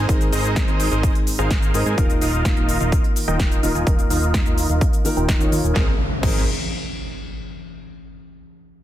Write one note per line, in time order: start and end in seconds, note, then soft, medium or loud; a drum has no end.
0.00 0.08 G#2 medium
0.00 0.08 C4 medium
0.00 0.09 D#4 medium
0.00 0.10 G#4 medium
0.00 0.10 A#4 medium
0.08 0.30 G#1 loud
0.08 1.71 G#2 medium
0.08 1.71 C4 medium
0.08 0.23 D#4 medium
0.08 1.71 D#4 medium
0.08 0.23 G#4 medium
0.08 1.72 G#4 medium
0.08 0.23 A#4 medium
0.08 1.72 A#4 medium
0.08 0.23 C5 medium
0.08 0.23 D#5 medium
0.08 kick loud
0.08 closed hi-hat medium
0.08 shaker soft
0.21 closed hi-hat soft
0.21 shaker soft
0.32 0.66 G#1 loud
0.32 0.65 D#4 medium
0.32 0.65 G#4 medium
0.32 0.65 A#4 medium
0.32 0.65 C5 medium
0.32 0.65 D#5 loud
0.32 open hi-hat loud
0.32 shaker medium
0.44 closed hi-hat soft
0.44 shaker soft
0.56 kick loud
0.56 snare loud
0.56 closed hi-hat loud
0.56 shaker soft
0.68 0.89 G#1 loud
0.68 0.89 D#4 medium
0.68 0.89 G#4 medium
0.68 0.89 A#4 medium
0.68 0.89 C5 medium
0.68 0.89 D#5 medium
0.68 closed hi-hat soft
0.80 open hi-hat loud
0.80 shaker medium
0.91 1.11 G#1 medium
0.91 1.14 D#4 medium
0.91 1.14 G#4 medium
0.91 1.14 A#4 medium
0.91 1.14 C5 medium
0.91 1.14 D#5 medium
0.91 closed hi-hat soft
0.91 shaker soft
1.03 kick loud
1.03 closed hi-hat loud
1.03 shaker soft
1.15 closed hi-hat soft
1.27 open hi-hat loud
1.27 shaker medium
1.39 1.72 G#1 loud
1.39 1.71 D#4 medium
1.39 1.71 G#4 medium
1.39 1.71 A#4 medium
1.39 1.71 C5 medium
1.39 1.71 F5 loud
1.39 closed hi-hat soft
1.39 shaker soft
1.51 kick loud
1.51 snare loud
1.51 closed hi-hat medium
1.51 shaker soft
1.62 closed hi-hat soft
1.62 shaker soft
1.74 1.84 G#1 loud
1.74 1.95 C4 medium
1.74 1.95 D#4 medium
1.74 1.83 D#4 medium
1.74 1.83 G#4 medium
1.74 1.95 G#4 medium
1.74 1.83 A#4 medium
1.74 1.95 A#4 medium
1.74 1.83 C5 medium
1.74 1.83 D#5 loud
1.74 open hi-hat loud
1.74 shaker medium
1.86 1.95 G#2 loud
1.86 1.95 D#4 medium
1.86 1.95 G#4 medium
1.86 1.95 A#4 medium
1.86 1.95 C5 medium
1.86 1.95 G#5 loud
1.86 shaker soft
1.97 2.19 D#1 medium
1.97 3.60 D#3 medium
1.97 3.60 A#3 medium
1.97 2.12 D#4 medium
1.97 3.60 D#4 medium
1.97 2.12 F4 medium
1.97 3.61 F4 medium
1.97 2.12 A#4 medium
1.97 3.61 A#4 medium
1.97 2.12 D#5 medium
1.97 2.12 F5 medium
1.97 kick loud
1.97 closed hi-hat medium
1.97 shaker soft
2.10 closed hi-hat soft
2.10 shaker soft
2.21 2.55 D#1 loud
2.21 2.54 D#4 medium
2.21 2.54 F4 medium
2.21 2.54 A#4 medium
2.21 2.54 D#5 medium
2.21 2.54 F5 medium
2.21 open hi-hat loud
2.21 shaker medium
2.33 closed hi-hat soft
2.33 shaker soft
2.45 kick loud
2.45 snare loud
2.45 closed hi-hat medium
2.45 shaker soft
2.57 2.78 D#1 loud
2.57 2.78 D#4 medium
2.57 2.78 F4 medium
2.57 2.78 A#4 medium
2.57 2.78 D#5 medium
2.57 2.78 F5 medium
2.57 closed hi-hat soft
2.69 open hi-hat loud
2.69 shaker medium
2.80 3.00 D#1 loud
2.80 3.03 D#4 medium
2.80 3.03 F4 medium
2.80 3.03 A#4 medium
2.80 3.03 D#5 medium
2.80 3.03 F5 medium
2.80 closed hi-hat soft
2.80 shaker soft
2.92 kick loud
2.92 closed hi-hat medium
2.92 shaker soft
3.04 closed hi-hat soft
3.16 open hi-hat loud
3.16 shaker medium
3.28 3.61 D#1 loud
3.28 3.60 D#4 medium
3.28 3.60 F4 medium
3.28 3.60 A#4 medium
3.28 3.60 D#5 medium
3.28 3.60 G5 loud
3.28 closed hi-hat soft
3.28 shaker soft
3.40 kick loud
3.40 snare loud
3.40 closed hi-hat medium
3.40 shaker soft
3.52 closed hi-hat soft
3.52 shaker soft
3.63 3.73 D#1 loud
3.63 3.84 D#3 medium
3.63 3.84 A#3 medium
3.63 3.72 D#4 medium
3.63 3.84 D#4 medium
3.63 3.72 F4 medium
3.63 3.84 F4 medium
3.63 3.72 A#4 medium
3.63 3.84 A#4 medium
3.63 3.72 D#5 medium
3.63 3.72 F5 loud
3.63 open hi-hat loud
3.63 shaker medium
3.75 3.84 D#1 loud
3.75 3.84 D#4 medium
3.75 3.84 F4 medium
3.75 3.84 A#4 medium
3.75 3.84 D#5 medium
3.75 3.84 G#5 medium
3.75 closed hi-hat soft
3.75 shaker soft
3.86 4.08 D#1 medium
3.86 5.02 D#3 medium
3.86 5.02 A#3 medium
3.86 4.01 D#4 medium
3.86 5.03 D#4 medium
3.86 4.01 F4 medium
3.86 4.01 A#4 medium
3.86 5.03 A#4 medium
3.86 4.01 D#5 medium
3.86 4.01 F5 loud
3.86 kick loud
3.86 closed hi-hat medium
3.86 shaker soft
3.99 closed hi-hat soft
3.99 shaker soft
4.10 4.44 D#1 loud
4.10 4.43 D#4 medium
4.10 4.43 F4 medium
4.10 4.43 A#4 medium
4.10 4.43 D#5 medium
4.10 4.43 F5 loud
4.10 open hi-hat loud
4.10 shaker medium
4.22 closed hi-hat soft
4.22 shaker soft
4.34 kick loud
4.34 snare loud
4.34 closed hi-hat medium
4.34 shaker soft
4.46 4.67 D#1 medium
4.46 4.67 D#4 medium
4.46 4.67 F4 medium
4.46 4.67 A#4 medium
4.46 4.67 D#5 medium
4.46 4.67 F5 medium
4.46 closed hi-hat soft
4.46 shaker soft
4.58 open hi-hat loud
4.58 shaker medium
4.69 4.89 D#1 loud
4.69 4.92 D#4 medium
4.69 4.92 F4 medium
4.69 4.92 A#4 medium
4.69 4.92 D#5 medium
4.69 4.92 F5 medium
4.69 closed hi-hat soft
4.69 shaker soft
4.81 kick loud
4.81 closed hi-hat medium
4.81 shaker soft
4.93 closed hi-hat soft
4.93 shaker soft
5.04 5.37 D#3 medium
5.04 5.37 A#3 medium
5.04 5.38 D#4 medium
5.04 5.38 F4 medium
5.04 5.38 A#4 medium
5.04 open hi-hat loud
5.04 shaker medium
5.17 5.50 D#1 loud
5.17 5.49 D#4 medium
5.17 5.49 F4 medium
5.17 5.49 A#4 medium
5.17 5.49 D#5 medium
5.17 5.49 G5 loud
5.17 closed hi-hat soft
5.17 shaker soft
5.29 kick loud
5.29 snare loud
5.29 closed hi-hat medium
5.29 shaker soft
5.40 5.73 D#3 medium
5.40 5.73 A#3 medium
5.40 5.73 D#4 medium
5.40 5.73 F4 medium
5.40 5.73 C#5 medium
5.40 closed hi-hat soft
5.40 shaker soft
5.52 5.62 D#2 loud
5.52 5.61 D#4 medium
5.52 5.61 F4 medium
5.52 5.61 A#4 medium
5.52 5.61 D#5 medium
5.52 5.61 F5 loud
5.52 open hi-hat loud
5.52 shaker medium
5.64 5.73 D#1 medium
5.64 5.73 D#4 medium
5.64 5.73 F4 medium
5.64 5.73 A#4 medium
5.64 5.73 D#5 medium
5.64 5.73 G#5 loud
5.64 closed hi-hat soft
5.64 shaker soft
5.74 5.89 G#1 medium
5.74 5.88 C4 medium
5.74 5.89 D#4 medium
5.74 5.89 G#4 medium
5.74 5.89 A#4 medium
5.74 5.90 A#4 medium
5.74 5.89 C5 medium
5.74 5.89 D#5 medium
5.74 kick loud
5.74 snare medium
5.74 impact medium
6.21 6.45 G#1 medium
6.21 6.40 C4 medium
6.21 6.40 D#4 medium
6.21 6.41 D#4 medium
6.21 6.41 G#4 medium
6.21 6.41 A#4 medium
6.21 6.42 A#4 medium
6.21 6.41 C5 medium
6.21 6.41 D#5 medium
6.21 kick loud
6.21 crash medium